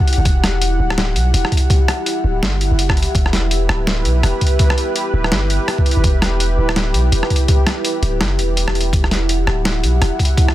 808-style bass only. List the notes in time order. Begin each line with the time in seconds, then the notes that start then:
0.18 F#1
0.25 E1
0.80 D1
1.15 B1
1.34 E1
2.24 D1
2.42 G1
2.71 F#1
3.15 E1
3.69 D1
4.05 B1
4.23 E1
5.14 D1
5.32 G1
5.97 F#1
6.04 E1
6.58 D1
6.94 B1
7.12 E1
8.02 D1
8.21 F#1
8.39 E1
8.93 E1
9.47 D1
9.83 B1
10.02 E1